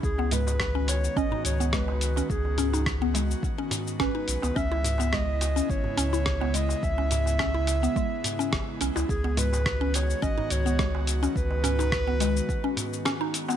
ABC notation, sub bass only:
X:1
M:4/4
L:1/16
Q:"Swing 16ths" 1/4=106
K:G#phr
V:1 name="Sub bass" clef=bass
C,,6- C,, z G,,, z C,,4- C,, z | C,,6- C,, z4 z G,,, z B,,, C,, | C,,6- C,, z G,,, z C,,4- C,, z | C,,6- C,, z4 z G,,, z B,,, C,, |
C,,6- C,, z G,,, z C,,4- C,, z | C,,6- C,, z8 z |]